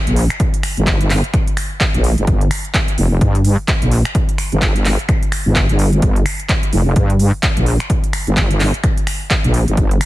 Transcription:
0.07 wobble bass A#1, closed hi-hat
0.16 open hi-hat
0.30 finger snap, closed hi-hat
0.40 kick, closed hi-hat
0.54 closed hi-hat
0.63 finger snap, open hi-hat
0.77 wobble bass G1, closed hi-hat
0.87 kick, clap, closed hi-hat
1.01 closed hi-hat
1.10 clap, open hi-hat
1.24 closed hi-hat
1.34 finger snap, kick, closed hi-hat
1.48 closed hi-hat
1.57 finger snap, open hi-hat
1.80 kick, clap, closed hi-hat
1.94 wobble bass A#1, closed hi-hat
2.04 open hi-hat
2.18 wobble bass G1, closed hi-hat
2.27 wobble bass G1, kick, closed hi-hat
2.41 closed hi-hat
2.51 finger snap, open hi-hat
2.65 closed hi-hat
2.74 kick, clap, closed hi-hat
2.88 closed hi-hat
2.98 wobble bass F1, open hi-hat
3.21 wobble bass G2, kick, closed hi-hat
3.35 closed hi-hat
3.45 open hi-hat
3.68 kick, clap, closed hi-hat
3.82 wobble bass A#1, closed hi-hat
3.91 open hi-hat
4.05 finger snap, closed hi-hat
4.15 kick, closed hi-hat
4.29 closed hi-hat
4.38 finger snap, open hi-hat
4.52 wobble bass G1, closed hi-hat
4.62 kick, clap, closed hi-hat
4.76 closed hi-hat
4.85 clap, open hi-hat
4.99 closed hi-hat
5.09 finger snap, kick, closed hi-hat
5.23 closed hi-hat
5.32 finger snap, open hi-hat
5.46 wobble bass G1
5.55 kick, clap, closed hi-hat
5.69 wobble bass G1, closed hi-hat
5.79 open hi-hat
5.93 closed hi-hat
6.02 wobble bass G1, kick, closed hi-hat
6.16 closed hi-hat
6.26 finger snap, open hi-hat
6.40 closed hi-hat
6.49 kick, clap, closed hi-hat
6.63 closed hi-hat
6.73 wobble bass F1, open hi-hat
6.96 wobble bass G2, kick, closed hi-hat
7.10 closed hi-hat
7.19 open hi-hat
7.43 kick, clap, closed hi-hat
7.57 wobble bass A#1, closed hi-hat
7.66 open hi-hat
7.80 finger snap, closed hi-hat
7.90 kick, closed hi-hat
8.04 closed hi-hat
8.13 finger snap, open hi-hat
8.27 wobble bass G1, closed hi-hat
8.37 kick, clap, closed hi-hat
8.51 closed hi-hat
8.60 clap, open hi-hat
8.74 closed hi-hat
8.84 finger snap, kick, closed hi-hat
8.97 closed hi-hat
9.07 finger snap, open hi-hat
9.30 kick, clap, closed hi-hat
9.44 wobble bass A#1, closed hi-hat
9.54 open hi-hat
9.68 wobble bass G1, closed hi-hat
9.77 wobble bass G1, kick, closed hi-hat
9.91 closed hi-hat
10.01 finger snap, open hi-hat

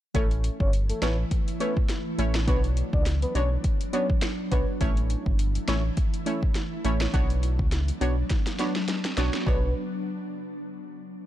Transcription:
0.14 analog synth bass A1, ambient pad E3 A3 E4, synth stab A3 C#4 E4 C#5, soft synth lead A4, kick, closed hi-hat
0.31 closed hi-hat
0.44 closed hi-hat
0.60 analog synth bass G1, soft synth lead C#5, kick
0.73 closed hi-hat
0.89 soft synth lead A4, closed hi-hat
1.02 analog synth bass A1, synth stab A3 C#4 E4 C#5, soft synth lead B4, finger snap, snare, closed hi-hat
1.31 kick, closed hi-hat
1.48 closed hi-hat
1.60 synth stab A3 C#4 E4 C#5, soft synth lead B4, closed hi-hat
1.77 kick
1.89 snare, closed hi-hat
2.18 analog synth bass A1, synth stab A3 C#4 E4 C#5, closed hi-hat
2.35 finger snap, snare
2.47 analog synth bass B1, ambient pad F#3 B3 D4, synth stab B3 D4 F#4 C#5, soft synth lead B4, kick, closed hi-hat
2.64 closed hi-hat
2.77 closed hi-hat
2.93 analog synth bass C#2, soft synth lead D5, kick
3.06 snare, closed hi-hat
3.22 soft synth lead B4, closed hi-hat
3.35 analog synth bass B1, synth stab B3 D4 F#4 C#5, soft synth lead C#5, closed hi-hat
3.64 kick, closed hi-hat
3.81 closed hi-hat
3.93 synth stab B3 D4 F#4 C#5, soft synth lead C#5, closed hi-hat
4.10 kick
4.22 finger snap, snare, closed hi-hat
4.51 analog synth bass B1, synth stab B3 D4 F#4 C#5, soft synth lead B4, kick, closed hi-hat
4.80 analog synth bass A1, ambient pad E3 A3 E4, synth stab A3 C#4 E4 C#5, kick, closed hi-hat
4.97 closed hi-hat
5.10 closed hi-hat
5.26 analog synth bass G1, kick
5.39 closed hi-hat
5.55 closed hi-hat
5.68 analog synth bass A1, synth stab A3 C#4 E4 C#5, finger snap, snare, closed hi-hat
5.97 kick, closed hi-hat
6.14 closed hi-hat
6.26 synth stab A3 C#4 E4 C#5, closed hi-hat
6.43 kick
6.55 snare, closed hi-hat
6.84 analog synth bass A1, synth stab A3 C#4 E4 C#5, closed hi-hat
7.01 finger snap, snare
7.13 analog synth bass B1, ambient pad F#3 B3 D4, synth stab B3 D4 F#4 C#5, kick, closed hi-hat
7.30 closed hi-hat
7.43 closed hi-hat
7.59 analog synth bass C#2, kick
7.72 snare, closed hi-hat
7.88 closed hi-hat
8.01 analog synth bass B1, synth stab B3 D4 F#4 C#5, closed hi-hat
8.30 kick, snare, closed hi-hat
8.47 snare, closed hi-hat
8.59 synth stab B3 D4 F#4 C#5, snare, closed hi-hat
8.76 snare
8.88 snare, closed hi-hat
9.05 snare, closed hi-hat
9.17 analog synth bass B1, synth stab B3 D4 F#4 C#5, snare, closed hi-hat
9.34 snare
9.46 analog synth bass B1, synth stab B3 D4 F#4 C#5, soft synth lead B4, kick

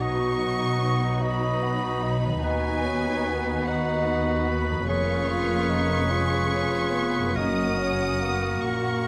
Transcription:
Already playing: harp B2 F#3 B3 D#4 F#4
0.00 double bass section B1, cello section B2, viola section F#3 D#4, violin section B3 B4 C#6, clarinet F#4, bassoon F#4, oboe D#5
0.18 violin section D#4
0.39 violin section F#4
0.60 violin section D#4
0.80 violin section B3
1.00 violin section D#4
1.21 bassoon D#4, violin section F#4 B5, clarinet F#4, oboe D#5
1.41 violin section D#4
1.61 violin section B3, bassoon F#4
1.82 violin section D#4
2.03 bassoon D#4, violin section F#4
2.24 harp D#3, violin section D#4
2.30 harp B3
2.35 harp D#4
2.39 cello section D#2, double bass section D#2, viola section B3, violin section B3 G#5, harp F#4
2.43 bassoon D#4, clarinet F#4, oboe B4
2.66 violin section D#4
2.85 bassoon C#4, violin section F#4
3.06 violin section D#4
3.27 bassoon B3, violin section B3
3.46 violin section D#4
3.66 bassoon D#4, violin section F#4 F#5, clarinet F#4, oboe B4
3.85 violin section D#4
4.04 violin section B3
4.25 violin section D#4
4.46 violin section F#4 B5
4.65 violin section D#4
4.70 harp F2
4.75 harp B3
4.80 harp C#4
4.84 double bass section F1, cello section F2, viola section A#3, violin section F4 F5 C#6, harp G#4, clarinet G#4
4.88 bassoon C#4, viola section C#4, oboe B4
5.28 bassoon F4
5.69 bassoon D#4
6.09 viola section G#3, bassoon F4, violin section G#4 C#5
6.51 viola section C#4
6.93 viola section B3
7.18 harp F#2
7.23 harp A#3
7.28 harp C#4
7.32 double bass section F#1, viola section A#3 C#4, harp F#4, clarinet F#4, violin section F#4 D#6, oboe A#4
7.36 cello section F#2, timpani F#2, bassoon D#4, violin section F#5
7.78 viola section C#4, bassoon C#4
8.21 bassoon A#3, viola section B3
8.61 double bass section A#1, cello section A#2, viola section A#3, violin section F#5 C#6

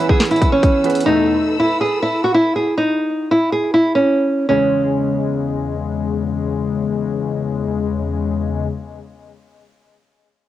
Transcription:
Already playing: grand piano E3, string section G#4 C#5 B5 E6
0.00 grand piano B3 C#4 G#4 B4
0.09 nylon-string guitar G#4, kick
0.20 snare, closed hi-hat
0.25 closed hi-hat
0.31 nylon-string guitar E4, closed hi-hat
0.36 closed hi-hat
0.42 kick, closed hi-hat
0.52 nylon-string guitar C#4
0.63 kick, closed hi-hat
0.83 grand piano E3 B3 C#4 G#4 B4, closed hi-hat, open hi-hat
0.90 closed hi-hat
0.95 closed hi-hat
1.00 closed hi-hat
1.06 analog polysynth E2 B2 A3, nylon-string guitar D#4, string section A4 B4 B5 E6
1.60 nylon-string guitar E4
1.81 nylon-string guitar G#4
2.02 nylon-string guitar E4
2.24 nylon-string guitar F#4
2.34 nylon-string guitar E4
2.56 nylon-string guitar G#4
2.78 nylon-string guitar D#4
3.31 nylon-string guitar E4
3.52 nylon-string guitar G#4
3.74 nylon-string guitar E4
3.95 nylon-string guitar C#4
4.49 analog polysynth E2 C#3 G#3, nylon-string guitar C#4

